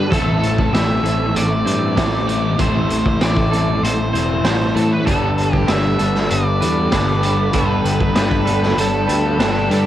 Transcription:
Already playing: G3 G4 A4 B4
0.10 A1 A2 E3 G3 A3 C4 E4 A4, kick, closed hi-hat
0.43 closed hi-hat
0.58 kick
0.72 A1 E3 A3 C4 E4 G4 E5, snare, closed hi-hat
1.03 A1 A2 G3 A3 C4 E4 A4, closed hi-hat
1.35 A1 D5, closed hi-hat
1.65 G2 A3 C4 E4 C5, closed hi-hat
1.95 A1 A2 E3 G3 A3 C4 E4 A4 C5, kick, snare, closed hi-hat
2.27 A2 E3 A3, closed hi-hat
2.57 A1 A2 E3 G3 A3 C4 E4 A4 C5, kick, closed hi-hat
2.90 A1, closed hi-hat
3.06 kick
3.20 A1 E3 A3 C4 E4 G4 D5, snare, closed hi-hat
3.37 kick
3.51 A2 G3 A3 C4 E4 A4, closed hi-hat
3.83 A1 C5, closed hi-hat
4.13 E1 A3 C4 E4 C5, closed hi-hat
4.44 A1 A2 E3 G3 A3 C4 E4 A4 C5, snare, closed hi-hat
4.75 A2 E3 A3 A4, closed hi-hat
4.92 B4
5.05 G1 G2 D3 G3 B3 D4 A4 G5 B5, kick, closed hi-hat
5.38 closed hi-hat
5.53 G4, kick
5.67 G1 D3 G3 B3 D4 G4 E5, snare, closed hi-hat
5.98 G1 G3 B3 D4 A4, closed hi-hat
6.15 snare
6.30 G1 D5, closed hi-hat
6.60 E2 G3 B3 D4 B4, closed hi-hat
6.92 G1 D3 G3 B3 D4 A4 B4, kick, snare, closed hi-hat
7.21 G2 D3 G3, closed hi-hat
7.52 G1 G2 D3 G3 B3 D4 A4 B4, kick, closed hi-hat
7.85 G1, closed hi-hat
8.00 kick
8.15 G1 D3 G3 B3 D4 G4 B4, snare, closed hi-hat
8.31 kick
8.45 G3 B3 D4 A4, closed hi-hat
8.63 snare
8.78 G1 A4, closed hi-hat
9.07 D2 G3 B3 D4 B4, closed hi-hat
9.38 G1 D3 G3 B3 D4 A4 B4, snare, closed hi-hat
9.70 G2 D3 G3 A4, closed hi-hat

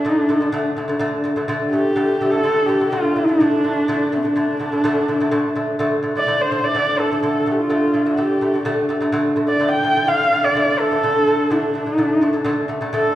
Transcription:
Already playing: D4
0.05 D3 A3 D#4
0.20 D4
0.29 D3 A3
0.35 D#4
0.41 D3 A3
0.48 D4
0.52 D3 A3
0.76 D3 A3
0.88 D3 A3
0.99 D3 A3
1.24 D3 A3
1.36 D3 A3
1.48 D3 A3
1.72 D3 A3 G4
1.96 D3 A3 D4
2.21 D3 A3
2.30 D3 A3 A4
2.43 D3 A3
2.66 D3 A3 G4
2.80 D3 A3
2.90 D3 A3 F4
3.16 D3 A3
3.26 D3 A3 D4
3.40 D3 A3
3.64 D3 A3
3.88 D3 A3
4.12 D3 A3 C4
4.23 D3 A3 D4
4.36 D3 A3
4.59 D3 A3
4.72 D3 A3
4.84 D3 A3
5.08 D3 A3
5.20 D3 A3
5.31 D3 A3
5.55 D3 A3
5.79 D3 A3 D4
6.03 D3 A3
6.15 D3 A3 D5
6.27 D3 A3
6.41 C5
6.51 D3 A3
6.63 D3 A3 D5
6.75 D3 A3
6.99 D3 A3 A4
7.11 D3 A3
7.23 D3 A3 A4
7.46 D3 A3
7.51 G4
7.58 F4
7.70 D3 A3
7.94 D3 A3
8.05 D3 A3 G4
8.17 D3 A3
8.41 D3 A3
8.54 D3 A3
8.65 D3 A3
8.89 D3 A3
9.01 D3 A3
9.12 D3 A3
9.36 D3 A3
9.48 D5
9.60 D3 A3 D4
9.72 G5
9.83 D3 A3
9.96 D3 A3
10.07 D3 A3 F5
10.31 D3 A3
10.43 D3 A3 D5
10.55 D3 A3
10.79 D3 A3 A4
10.91 D3 A3
11.03 D3 A3
11.27 D3 A3
11.50 D3 A3 D4
11.74 D3 A3
11.86 D3 A3
11.98 D3 A3
12.21 D3 A3
12.33 D3 A3
12.44 D3 A3
12.68 D3 A3
12.81 D3 A3
12.93 D3 A3 A4

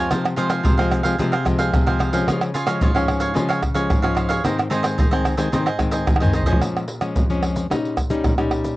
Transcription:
Already playing: F3 G#3 C4
0.10 C3 F4 G#4 C5 F5, pandeiro, tamborim, shaker, surdo
0.25 muted cavaquinho stroke, pandeiro, tamborim, shaker
0.36 F3 G#3 C4 F4 G#4 C5 F5, pandeiro, shaker
0.49 G#4 C5 F5, pandeiro, tamborim, shaker
0.63 C3 F4 G#4 C5 F5, pandeiro, shaker, surdo
0.78 F3 G#3 C4 G#4 C5 F5, pandeiro, tamborim, shaker
0.92 pandeiro, tamborim, shaker
1.03 F3 G#3 C4 G#4 C5 F5, pandeiro, shaker
1.18 C3 F3 G#3 C4 F4 G#4 C5 F5, pandeiro, shaker, surdo
1.32 G#4 C5 F5, pandeiro, tamborim, shaker
1.45 F3 G#3 C4, muted cavaquinho stroke, pandeiro, tamborim, shaker, surdo
1.59 G#4 C5 F5, pandeiro, shaker
1.74 C3, pandeiro, tamborim, shaker, surdo
1.86 F3 G#3 C4 G#4 C5 F5, pandeiro, tamborim, shaker
1.99 F4 G#4 C5 F5, pandeiro, tamborim
2.13 F3 G#3 C#4 G#4 C5 F5, pandeiro, shaker
2.27 C#3 F4 G#4 C#5 F5, pandeiro, tamborim, shaker, surdo
2.41 muted cavaquinho stroke, pandeiro, tamborim, shaker
2.54 F4 G#4 C#5 F5, pandeiro, shaker
2.66 F3 G#3 C#4 G#4 C#5 F5, pandeiro, tamborim, shaker
2.81 G#2 F4 G#4 C#5 F5, pandeiro, shaker, surdo
2.94 F3 G#3 C#4 G#4 C#5 F5, pandeiro, tamborim, shaker
3.08 pandeiro, tamborim
3.20 G#4 C#5 F5, pandeiro, shaker
3.34 C#3 F3 G#3 C#4 F4 G#4 C#5 F5, pandeiro, shaker, surdo
3.49 G#4 C#5 F5, pandeiro, tamborim, shaker
3.62 muted cavaquinho stroke, pandeiro, tamborim, surdo
3.74 F3 G#3 C#4 G#4 C#5 F5, pandeiro, shaker
3.90 G#2, pandeiro, tamborim, shaker, surdo
4.02 F3 G#3 C#4 G#4 C#5 F5, pandeiro, tamborim, shaker
4.15 F4 G#4 C#5 F5, pandeiro, tamborim, shaker
4.29 G#4 C#5 F5, pandeiro, shaker
4.44 G#2 D#3 G#3 C4 D#4 G#4 C5 D#5, pandeiro, tamborim, shaker, surdo
4.58 muted cavaquinho stroke, pandeiro, tamborim, shaker
4.70 D#3 G#3 C4 D#4 G#4 C5 D#5, pandeiro
4.83 G#4 C5 D#5, pandeiro, tamborim, shaker
4.98 D#3 D#4 G#4 C5 D#5, pandeiro, shaker, surdo
5.11 D#3 G#3 C4 G#4 C5 D#5, pandeiro, tamborim, shaker
5.25 pandeiro, tamborim, shaker
5.37 D#3 G#3 C4 G#4 C5 D#5, pandeiro, shaker
5.52 G#2 D#3 G#3 C4 D#4 G#4 C5 D#5, pandeiro, shaker, surdo
5.66 G#4 C5 D#5, pandeiro, tamborim, shaker
5.79 D#3 G#3 C4, muted cavaquinho stroke, pandeiro, tamborim, surdo
5.91 G#4 C5 D#5, pandeiro, shaker
6.07 D#3, pandeiro, tamborim, shaker, surdo
6.16 tamborim
6.20 D#3 G#3 C4 G#4 C5 D#5, pandeiro, shaker
6.25 surdo
6.33 D#4 G#4 C5 D#5, pandeiro, shaker
6.43 F3 C5 D#5, pandeiro, shaker, surdo
6.47 G#3 C#4 G#4
6.53 surdo
6.61 A#2, pandeiro, tamborim, shaker, surdo
6.77 pandeiro, tamborim, shaker
6.88 pandeiro
7.01 F3 G#3 C#4, pandeiro, tamborim, shaker
7.15 F2, pandeiro, shaker, surdo
7.30 F3 G#3 C#4, pandeiro, shaker
7.43 pandeiro, tamborim
7.56 pandeiro, shaker
7.70 A#2 G3 C#4 D#4, pandeiro, tamborim, shaker, surdo
7.85 pandeiro, shaker
7.97 pandeiro, tamborim, shaker, surdo
8.10 G3 C#4 D#4, pandeiro, shaker
8.24 A#2, pandeiro, tamborim, shaker, surdo
8.38 G3 C#4 D#4, pandeiro, tamborim, shaker
8.51 pandeiro, tamborim
8.64 pandeiro, shaker

